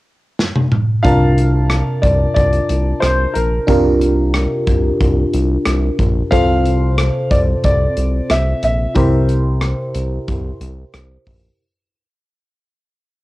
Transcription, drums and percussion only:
0.39 snare
0.55 high tom
0.71 mid tom
1.05 kick, closed hi-hat
1.38 closed hi-hat
1.70 cross-stick, closed hi-hat
2.03 kick, closed hi-hat
2.36 kick, closed hi-hat
2.53 closed hi-hat
2.69 closed hi-hat
3.02 cross-stick, closed hi-hat
3.35 closed hi-hat
3.68 kick, closed hi-hat
4.02 closed hi-hat
4.34 cross-stick, closed hi-hat
4.67 kick, closed hi-hat
5.01 kick, closed hi-hat
5.34 closed hi-hat
5.66 cross-stick, closed hi-hat
5.99 kick, closed hi-hat
6.32 kick, closed hi-hat
6.66 closed hi-hat
6.98 cross-stick, closed hi-hat
7.31 kick, closed hi-hat
7.64 kick, closed hi-hat
7.97 closed hi-hat
8.30 cross-stick, closed hi-hat
8.63 closed hi-hat
8.95 kick, closed hi-hat
9.29 closed hi-hat
9.61 cross-stick, closed hi-hat
9.95 closed hi-hat
10.28 kick, closed hi-hat
10.61 closed hi-hat
10.94 cross-stick, closed hi-hat
11.27 kick, open hi-hat

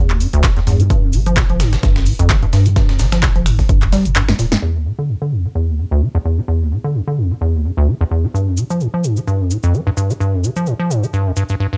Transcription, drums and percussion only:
0.10 clap
0.20 closed hi-hat, open hi-hat, cabasa
0.33 closed hi-hat, cabasa
0.44 kick, snare, clap, closed hi-hat, cabasa
0.57 snare, closed hi-hat
0.67 snare, closed hi-hat, open hi-hat, cabasa
0.80 closed hi-hat, cabasa
0.90 kick, closed hi-hat, cabasa
1.13 closed hi-hat, open hi-hat, cabasa
1.26 closed hi-hat, cabasa
1.37 kick, snare, clap, closed hi-hat, cabasa
1.50 closed hi-hat
1.60 finger snap, snare, closed hi-hat, open hi-hat, cabasa
1.73 snare, closed hi-hat, cabasa
1.83 kick, snare, closed hi-hat, cabasa
1.96 snare, closed hi-hat
2.06 open hi-hat, cabasa
2.19 closed hi-hat, cabasa
2.30 kick, snare, clap, closed hi-hat, cabasa
2.43 closed hi-hat
2.53 snare, closed hi-hat, open hi-hat, cabasa
2.66 closed hi-hat, cabasa
2.76 kick, snare, closed hi-hat, cabasa
2.89 snare, closed hi-hat
2.99 snare, closed hi-hat, open hi-hat, cabasa
3.12 finger snap, snare, closed hi-hat, cabasa
3.23 kick, snare, clap, closed hi-hat, cabasa
3.36 closed hi-hat
3.46 finger snap, closed hi-hat, open hi-hat, cabasa
3.59 kick, snare, open hi-hat, cabasa
3.69 kick, closed hi-hat, cabasa
3.82 clap, closed hi-hat
3.92 snare, closed hi-hat, open hi-hat, cabasa
4.05 closed hi-hat, cabasa
4.16 clap, closed hi-hat, cabasa
4.29 snare, closed hi-hat
4.39 snare, closed hi-hat, open hi-hat, cabasa
4.52 snare, closed hi-hat, cabasa
8.35 cabasa
8.57 cabasa
8.70 cabasa
8.80 cabasa
9.04 cabasa
9.17 cabasa
9.28 cabasa
9.51 cabasa
9.63 cabasa
9.74 cabasa
9.97 cabasa
10.10 cabasa
10.21 cabasa
10.44 cabasa
10.56 cabasa
10.66 cabasa
10.91 cabasa
11.03 cabasa
11.14 cabasa
11.36 cabasa
11.49 cabasa

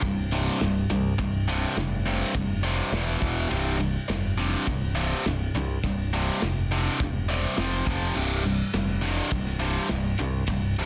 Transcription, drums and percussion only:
0.01 kick, ride
0.31 ride
0.61 snare, ride
0.91 ride
1.19 kick, ride
1.49 ride
1.77 snare, ride
2.06 ride
2.35 kick, ride
2.64 ride
2.93 snare, ride
3.22 kick, ride
3.51 ride
3.80 ride
4.09 snare, ride
4.38 ride
4.67 kick, ride
4.97 ride
5.26 snare, ride
5.55 ride
5.84 kick, ride
6.13 ride
6.42 snare, ride
6.72 ride
7.00 kick, ride
7.29 ride
7.57 snare, ride
7.86 kick, ride
8.15 crash
8.44 ride
8.74 snare, ride
9.02 ride
9.31 kick, ride
9.46 snare
9.60 ride
9.89 snare, ride
10.18 ride
10.47 kick, ride
10.76 ride

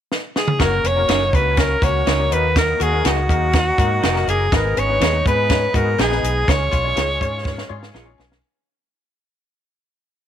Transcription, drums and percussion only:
0.12 snare
0.36 snare
0.48 mid tom
0.60 kick, snare, closed hi-hat
0.84 closed hi-hat
1.08 snare, closed hi-hat
1.33 kick, closed hi-hat
1.57 kick, snare, closed hi-hat
1.82 kick, closed hi-hat
2.07 snare, closed hi-hat
2.32 closed hi-hat
2.56 kick, snare, closed hi-hat
2.81 closed hi-hat
3.05 snare, closed hi-hat
3.29 kick, closed hi-hat
3.53 kick, snare, closed hi-hat
3.78 kick, closed hi-hat
4.03 snare, closed hi-hat
4.16 snare
4.28 closed hi-hat
4.52 kick, snare, closed hi-hat
4.77 closed hi-hat
5.01 snare, closed hi-hat
5.26 kick, closed hi-hat
5.50 kick, snare, closed hi-hat
5.74 kick, closed hi-hat
5.99 snare, closed hi-hat
6.12 snare
6.24 closed hi-hat
6.48 kick, snare, closed hi-hat
6.73 kick, closed hi-hat
6.97 snare, closed hi-hat
7.21 kick, closed hi-hat
7.45 kick, snare
7.58 snare
7.83 snare
7.95 snare
8.20 snare
8.32 snare

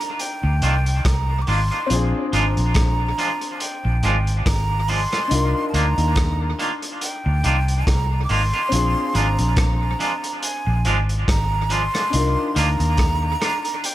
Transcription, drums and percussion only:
0.01 closed hi-hat
0.19 closed hi-hat
0.62 closed hi-hat
0.86 closed hi-hat
1.05 kick, cross-stick, closed hi-hat
1.47 open hi-hat
1.72 closed hi-hat
1.90 closed hi-hat
2.33 closed hi-hat
2.57 closed hi-hat
2.74 kick, cross-stick, closed hi-hat
3.19 closed hi-hat
3.41 closed hi-hat
3.60 closed hi-hat
4.03 closed hi-hat
4.27 closed hi-hat
4.46 kick, cross-stick, closed hi-hat
4.88 open hi-hat
5.12 cross-stick, closed hi-hat
5.31 closed hi-hat
5.74 closed hi-hat
5.98 closed hi-hat
6.16 kick, cross-stick, closed hi-hat
6.59 closed hi-hat
6.82 closed hi-hat
7.01 closed hi-hat
7.44 closed hi-hat
7.68 closed hi-hat
7.87 kick, cross-stick, closed hi-hat
8.29 open hi-hat
8.53 closed hi-hat
8.72 closed hi-hat
9.15 closed hi-hat
9.39 closed hi-hat
9.56 kick, cross-stick, closed hi-hat
10.00 closed hi-hat
10.24 closed hi-hat
10.43 closed hi-hat
10.85 closed hi-hat
11.09 closed hi-hat
11.28 kick, cross-stick, closed hi-hat
11.70 closed hi-hat
11.94 cross-stick, closed hi-hat
12.13 closed hi-hat
12.56 closed hi-hat
12.80 closed hi-hat
12.97 kick, cross-stick, closed hi-hat
13.42 cross-stick, closed hi-hat
13.65 closed hi-hat
13.84 closed hi-hat

